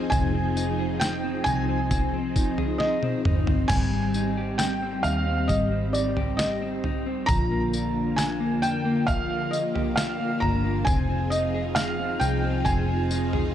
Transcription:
0.00 3.66 F3 medium
0.00 0.11 C4 medium
0.00 7.24 C4 medium
0.00 0.56 D#4 medium
0.00 3.66 D#4 medium
0.00 0.78 G#4 medium
0.00 3.66 G#4 loud
0.00 0.13 D#5 loud
0.10 1.42 F1 loud
0.10 0.33 C4 medium
0.10 1.03 G#5 loud
0.10 kick loud
0.10 floor tom loud
0.10 tambourine medium
0.34 1.23 C4 medium
0.56 1.01 D#4 medium
0.56 tambourine medium
0.79 2.58 G#4 medium
1.00 1.46 D#4 medium
1.00 1.47 G5 medium
1.00 snare loud
1.00 tambourine loud
1.24 1.68 C4 medium
1.44 3.21 C2 medium
1.44 2.35 D#4 medium
1.44 2.84 G#5 loud
1.44 floor tom medium
1.44 tambourine medium
1.68 1.91 C4 medium
1.91 2.13 C4 medium
1.91 kick medium
1.91 floor tom medium
1.91 tambourine medium
2.14 3.03 C4 medium
2.36 2.80 D#4 medium
2.36 kick medium
2.36 tambourine medium
2.58 4.37 G#4 medium
2.58 floor tom medium
2.78 3.25 D#4 medium
2.78 3.72 D#5 medium
2.78 snare medium
3.03 3.47 C4 medium
3.03 high tom medium
3.25 3.68 G1 medium
3.25 4.15 D#4 medium
3.25 mid tom loud
3.47 3.92 C4 medium
3.47 floor tom loud
3.68 5.00 G#1 medium
3.68 5.49 G3 medium
3.68 4.61 G#5 loud
3.68 kick loud
3.68 floor tom loud
3.68 crash medium
3.68 tambourine medium
3.93 4.81 C4 medium
4.14 4.58 D#4 medium
4.14 tambourine medium
4.37 6.16 G4 medium
4.58 5.03 D#4 medium
4.58 5.05 G5 medium
4.58 snare loud
4.58 tambourine loud
4.82 5.26 C4 medium
5.03 5.47 D#2 medium
5.03 5.93 D#4 medium
5.03 5.50 F5 loud
5.03 tambourine medium
5.27 5.70 C4 medium
5.48 7.24 G#1 loud
5.48 7.28 G3 medium
5.48 5.95 D#5 medium
5.48 kick medium
5.48 floor tom medium
5.48 tambourine medium
5.72 6.60 C4 medium
5.93 6.38 D#4 medium
5.93 6.40 D5 medium
5.93 tambourine medium
6.17 9.11 G4 medium
6.17 floor tom medium
6.37 6.83 D#4 medium
6.37 7.30 D#5 medium
6.37 snare loud
6.37 tambourine medium
6.62 7.05 C4 medium
6.84 7.38 D#4 medium
6.84 floor tom medium
7.06 7.37 C4 medium
7.26 8.63 A#1 medium
7.26 10.83 D3 medium
7.26 9.07 F3 medium
7.26 10.83 A#3 medium
7.26 13.54 F4 loud
7.26 8.20 A#5 loud
7.26 kick loud
7.26 floor tom loud
7.26 tambourine medium
7.51 8.39 A#3 medium
7.73 8.17 D4 medium
7.73 tambourine medium
8.16 8.62 D4 medium
8.16 8.59 G#5 loud
8.16 snare loud
8.16 tambourine loud
8.40 8.84 A#3 medium
8.62 10.38 F2 medium
8.62 9.52 D4 medium
8.62 9.09 G5 loud
8.62 tambourine medium
8.85 9.29 A#3 medium
9.07 11.35 F3 medium
9.07 9.53 F5 loud
9.07 kick medium
9.07 floor tom medium
9.07 tambourine medium
9.30 10.18 A#3 medium
9.51 9.98 D#5 medium
9.51 tambourine medium
9.75 10.96 G4 medium
9.75 floor tom medium
9.96 10.41 D4 medium
9.96 10.38 F5 medium
9.96 snare loud
9.96 tambourine medium
10.20 10.63 A#3 medium
10.40 10.84 G1 loud
10.40 10.96 D4 medium
10.40 10.87 A#5 loud
10.40 floor tom medium
10.64 10.87 A#3 medium
10.85 12.17 F1 loud
10.85 13.54 F3 medium
10.85 11.09 C4 medium
10.85 13.54 C4 medium
10.85 13.54 D#4 medium
10.85 13.54 G#4 loud
10.85 11.27 G#5 loud
10.85 kick loud
10.85 floor tom loud
10.85 tambourine medium
11.10 11.99 C4 medium
11.30 11.76 D#4 medium
11.30 11.77 D#5 medium
11.30 tambourine medium
11.54 13.33 G#4 medium
11.75 12.21 D#4 medium
11.75 12.22 F5 loud
11.75 snare loud
11.75 tambourine loud
11.99 12.43 C4 medium
12.20 12.63 C2 loud
12.20 13.11 D#4 medium
12.20 12.66 G5 medium
12.20 tambourine medium
12.44 12.66 C4 medium
12.65 13.54 F1 loud
12.65 12.88 C4 loud
12.65 13.54 G#5 loud
12.65 kick medium
12.65 floor tom medium
12.65 tambourine medium
12.89 13.54 C4 medium
13.11 13.54 D#4 medium
13.11 tambourine medium
13.33 13.54 G#4 medium
13.33 floor tom medium

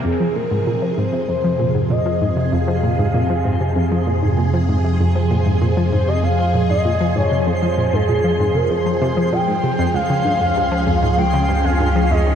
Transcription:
0.05 0.10 F2 medium
0.05 9.91 F2 medium
0.05 9.90 C3 medium
0.05 12.35 F3 medium
0.05 12.35 G#3 medium
0.05 0.37 G#4 medium
0.05 9.90 G#4 medium
0.05 12.35 C6 medium
0.20 0.32 F3 medium
0.36 0.44 A#2 medium
0.36 0.99 A#4 loud
0.51 0.63 G#2 medium
0.67 0.75 A#2 medium
0.82 0.90 F3 medium
0.97 1.06 G#2 medium
0.97 1.28 C5 medium
1.13 1.21 C3 medium
1.28 1.33 F2 medium
1.28 1.86 C5 loud
1.44 1.56 F3 medium
1.59 1.67 A#2 medium
1.75 1.87 G#2 medium
1.90 1.98 A#2 medium
1.90 2.54 D#5 loud
2.06 2.14 F3 medium
2.21 2.29 G#2 medium
2.37 2.45 C3 medium
2.52 2.57 F2 medium
2.52 4.38 F5 loud
2.68 2.80 F3 medium
2.83 2.91 A#2 medium
2.99 3.11 G#2 medium
3.14 3.22 A#2 medium
3.30 3.38 F3 medium
3.45 3.53 G#2 medium
3.61 3.69 C3 medium
3.76 3.81 F2 medium
3.92 4.03 F3 medium
4.07 4.15 A#2 medium
4.23 4.34 G#2 medium
4.38 4.46 A#2 medium
4.54 4.61 F3 medium
4.69 4.77 G#2 medium
4.84 4.92 C3 medium
5.00 5.05 F2 medium
5.15 5.27 F3 medium
5.31 5.39 A#2 medium
5.46 5.58 G#2 medium
5.62 5.70 A#2 medium
5.77 5.85 F3 medium
5.93 6.00 G#2 medium
5.93 6.10 C5 medium
6.08 6.16 C3 medium
6.08 6.25 D#5 medium
6.23 6.28 F2 medium
6.23 6.69 F5 loud
6.39 6.51 F3 medium
6.54 6.62 A#2 medium
6.70 6.82 G#2 medium
6.70 7.18 D#5 loud
6.85 6.93 A#2 medium
7.01 7.09 F3 medium
7.16 7.24 G#2 medium
7.16 7.49 C#5 medium
7.31 7.40 C3 medium
7.47 7.52 F2 medium
7.47 7.95 C5 loud
7.62 7.74 F3 medium
7.78 7.86 A#2 medium
7.93 8.05 G#2 medium
7.93 8.57 G#4 loud
8.09 8.17 A#2 medium
8.24 8.32 F3 medium
8.40 8.48 G#2 medium
8.55 8.63 C3 medium
8.55 8.72 A#4 medium
8.70 8.75 F2 medium
8.70 9.34 C5 loud
8.86 8.98 F3 medium
9.02 9.10 C3 loud
9.17 9.29 F3 medium
9.33 9.37 A#2 medium
9.33 9.96 G5 loud
9.48 9.56 G#2 medium
9.64 9.68 C3 medium
9.79 9.87 F2 loud
9.94 9.99 C#2 medium
9.94 12.35 C#2 medium
9.94 12.35 C#4 medium
9.94 12.35 G#4 medium
9.94 11.20 F5 loud
10.10 10.22 C#3 medium
10.25 10.33 G2 medium
10.41 10.53 F2 medium
10.56 10.64 G2 medium
10.72 10.84 F3 medium
10.87 10.95 F2 medium
11.03 11.11 G#2 medium
11.18 11.23 C#2 medium
11.18 11.66 G5 loud
11.34 11.46 C#3 medium
11.49 11.57 G2 medium
11.64 11.77 F2 medium
11.64 12.13 F5 loud
11.80 11.88 G2 medium
11.95 12.07 F3 medium
12.11 12.19 F2 medium
12.11 12.35 D#5 medium
12.26 12.34 G#2 medium

